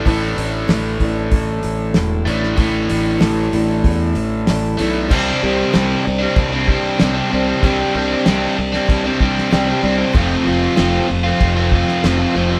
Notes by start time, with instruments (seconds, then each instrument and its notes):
0.05 fingered electric bass A1, steel-string acoustic guitar A2 D3 A3 D4 E4, overdriven electric guitar A2 E3 A3, kick, open hi-hat
0.37 fingered electric bass A1, open hi-hat
0.67 fingered electric bass A1, steel-string acoustic guitar A2 D3 A3 D4 E4, snare, open hi-hat
1.00 fingered electric bass A1, steel-string acoustic guitar A3 D4 E4, kick, open hi-hat
1.30 fingered electric bass A1, steel-string acoustic guitar D3 A3 D4 E4, kick, open hi-hat
1.63 fingered electric bass A1, open hi-hat
1.94 fingered electric bass E1, steel-string acoustic guitar A2 D3 A3 D4 E4, snare, open hi-hat
2.25 fingered electric bass A1, overdriven electric guitar A2 E3 A3, steel-string acoustic guitar A3 D4 E4, open hi-hat
2.43 snare
2.56 fingered electric bass A1, steel-string acoustic guitar A2 D3 A3 D4 E4, overdriven electric guitar A2 E3, kick, open hi-hat
2.60 overdriven electric guitar A3
2.89 fingered electric bass A1, open hi-hat
3.19 fingered electric bass A1, steel-string acoustic guitar A2 D3 A3 D4 E4, snare, open hi-hat
3.53 fingered electric bass A1, steel-string acoustic guitar A3 D4 E4, open hi-hat
3.84 fingered electric bass E2, steel-string acoustic guitar D3 A3 D4 E4, kick, open hi-hat
4.15 fingered electric bass A1, open hi-hat
4.47 fingered electric bass A1, steel-string acoustic guitar A2 D3 A3 D4 E4, snare, open hi-hat
4.77 fingered electric bass B1, overdriven electric guitar A2 E3 A3, steel-string acoustic guitar D4 E4, open hi-hat
4.82 steel-string acoustic guitar A3
5.09 fingered electric bass C2, steel-string acoustic guitar C3 G3 C4 D4 G4, overdriven electric guitar C3 G3 C4, kick, crash
5.13 overdriven electric guitar D4
5.42 fingered electric bass C2, overdriven electric guitar C3 G3 C4 D4, steel-string acoustic guitar C4 D4 G4
5.72 fingered electric bass C2, overdriven electric guitar C3 G3 C4 D4, steel-string acoustic guitar C3 G3 C4 D4 G4, snare, crash
6.05 fingered electric bass C2, steel-string acoustic guitar C4 D4 G4, muted overdriven electric guitar stroke
6.19 overdriven electric guitar G3 C4 D4
6.36 fingered electric bass C2, steel-string acoustic guitar G3 C4 D4 G4, kick, crash
6.52 overdriven electric guitar G3 C4 D4
6.67 overdriven electric guitar C3 G3 C4 D4, kick
6.98 fingered electric bass C2, overdriven electric guitar C3 G3 C4 D4, steel-string acoustic guitar C3 G3 C4, snare, crash
7.03 steel-string acoustic guitar D4 G4
7.14 overdriven electric guitar G3 C4 D4
7.29 fingered electric bass C2, overdriven electric guitar C3 G3 C4 D4, steel-string acoustic guitar D4 G4
7.34 steel-string acoustic guitar C4
7.46 overdriven electric guitar G3 C4 D4
7.61 fingered electric bass C2, overdriven electric guitar C3 G3 C4 D4, steel-string acoustic guitar C3 G3 C4, kick, crash
7.65 steel-string acoustic guitar D4 G4
7.94 fingered electric bass C2, overdriven electric guitar C3 G3 C4 D4, steel-string acoustic guitar C4 D4 G4
8.26 fingered electric bass C2, steel-string acoustic guitar C3 G3 C4 D4 G4, overdriven electric guitar C3 G3 C4 D4, snare, crash
8.56 fingered electric bass C2, steel-string acoustic guitar C4 G4, muted overdriven electric guitar stroke
8.73 overdriven electric guitar G3 C4 D4, snare
8.86 fingered electric bass C2, steel-string acoustic guitar G3 C4 D4 G4, kick, crash
9.04 overdriven electric guitar G3 C4 D4
9.20 fingered electric bass C2, overdriven electric guitar C3 G3 C4 D4, kick
9.38 snare
9.51 fingered electric bass C2, steel-string acoustic guitar C3 G3 C4 D4 G4, overdriven electric guitar C3 G3 C4 D4, snare, crash
9.68 overdriven electric guitar G3 C4 D4
9.82 fingered electric bass C2, overdriven electric guitar C3 G3 C4 D4, steel-string acoustic guitar C4 D4 G4
9.97 overdriven electric guitar G3 C4 D4
10.12 fingered electric bass F1, steel-string acoustic guitar F2 C3 F3 A3 C4 F4, overdriven electric guitar F3 A3 C4, kick, crash
10.17 overdriven electric guitar F4
10.45 fingered electric bass F1, overdriven electric guitar F3 A3 C4 F4, steel-string acoustic guitar F3 A3 C4 F4
10.75 steel-string acoustic guitar F2 C3 F3 A3 C4 F4, overdriven electric guitar F3 A3 C4, snare, crash
10.79 fingered electric bass F1, overdriven electric guitar F4
11.08 fingered electric bass F1, steel-string acoustic guitar F3 A3 C4 F4, muted overdriven electric guitar stroke
11.23 overdriven electric guitar A3 C4 F4
11.38 fingered electric bass F1, steel-string acoustic guitar F3 A3 C4 F4, kick, crash
11.55 overdriven electric guitar A3 C4 F4
11.72 overdriven electric guitar F3 A3 C4 F4, kick
11.88 snare
12.03 fingered electric bass F1, steel-string acoustic guitar F2 C3 F3 A3 C4 F4, overdriven electric guitar F3 A3 C4 F4, snare, crash
12.19 overdriven electric guitar A3 C4 F4
12.34 fingered electric bass F1, overdriven electric guitar F3 A3 C4 F4, steel-string acoustic guitar F3 A3 C4 F4
12.50 overdriven electric guitar A3 C4 F4